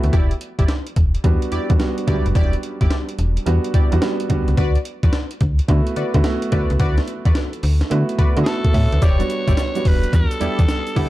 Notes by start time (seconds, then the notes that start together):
Already playing: A3 B3 E4 F#4 A4 D5 F#5 G5 A5 B5
0.04 D2, closed hi-hat
0.13 E1 E4 G4 D5, kick, closed hi-hat
0.31 closed hi-hat
0.41 closed hi-hat
0.58 G1 E4 G4 D5, kick, closed hi-hat
0.68 snare, closed hi-hat
0.87 closed hi-hat
0.96 E1, kick, closed hi-hat
1.15 closed hi-hat
1.24 E2 G3 B3 D4 F#4, kick, closed hi-hat
1.42 closed hi-hat
1.52 E2 E4 G4 D5, closed hi-hat
1.70 E2 G3 B3 D4 F#4, kick, closed hi-hat
1.79 G3 B3 D4 F#4, snare, closed hi-hat
1.98 closed hi-hat
2.07 D2 F#3 B3 D4 E4 F#4 G4 D5, kick, closed hi-hat
2.13 G3
2.26 F#1, closed hi-hat
2.35 E1 E4 G4 D5, kick, closed hi-hat
2.53 closed hi-hat
2.63 closed hi-hat
2.81 G1 E4 G4 D5, kick, closed hi-hat
2.91 snare, closed hi-hat
3.09 closed hi-hat
3.19 E1, closed hi-hat
3.37 closed hi-hat
3.46 E2 G3 B3 D4 F#4, closed hi-hat
3.64 closed hi-hat
3.74 E2 E4 G4 D5, kick, closed hi-hat
3.92 E2 G3 B3 D4 F#4, closed hi-hat
4.01 G3 B3 D4 F#4, snare, closed hi-hat
4.20 closed hi-hat
4.29 D2 G3 B3 D4 F#4, kick, closed hi-hat
4.48 C#2, closed hi-hat
4.57 D2 F#4 B4 D5, kick, closed hi-hat
4.75 closed hi-hat
4.85 closed hi-hat
5.03 E2 F#4 B4 D5, kick, closed hi-hat
5.13 snare, closed hi-hat
5.31 closed hi-hat
5.41 D2, kick, closed hi-hat
5.59 closed hi-hat
5.68 D3 A3 B3 E4 F#4, kick, closed hi-hat
5.87 closed hi-hat
5.96 D3 F#4 B4 D5, closed hi-hat
6.14 D3 A3 B3 E4 F#4, kick, closed hi-hat
6.24 A3 B3 E4 F#4, snare, closed hi-hat
6.42 closed hi-hat
6.51 D2 A3 B3 E4 F#4 B4 D5, kick, closed hi-hat
6.70 C#2, closed hi-hat
6.80 D2 F#4 B4 D5, kick, closed hi-hat
6.98 snare, closed hi-hat
7.08 closed hi-hat
7.25 E2 F#4 B4 D5, kick, closed hi-hat
7.35 snare, closed hi-hat
7.53 closed hi-hat
7.63 D2, open hi-hat
7.81 snare, closed hi-hat
7.90 D3 A3 B3 E4 F#4, closed hi-hat
8.09 closed hi-hat
8.18 D3 F#4 B4 D5 B5, kick, closed hi-hat
8.36 D3 A3 B3 E4 F#4, closed hi-hat
8.43 G#4 A5, snare, closed hi-hat
8.49 A4
8.64 A4, kick, closed hi-hat
8.74 A2 C#5 E5, kick, open hi-hat
8.92 D2 B4, closed hi-hat
9.02 E1 E4 G4 C#5 D5, kick, closed hi-hat, shaker
9.19 G3 B3 D4 F#4, closed hi-hat, shaker
9.30 closed hi-hat, shaker
9.47 G1 E4 G4 D5, kick, closed hi-hat, shaker
9.57 snare, closed hi-hat, shaker
9.75 G3 B3 D4 F#4, closed hi-hat, shaker
9.85 E1 B4, kick, open hi-hat
10.03 closed hi-hat, shaker
10.13 E2 A4, kick, closed hi-hat, shaker
10.31 closed hi-hat, shaker
10.40 E2 G3 B3 D4 E4 G4 D5, closed hi-hat, shaker
10.59 E2, kick, closed hi-hat, shaker
10.69 snare, closed hi-hat, shaker
10.87 closed hi-hat, shaker
10.96 D2 G3 B3 D4 E4 G4 D5 F#5, kick, open hi-hat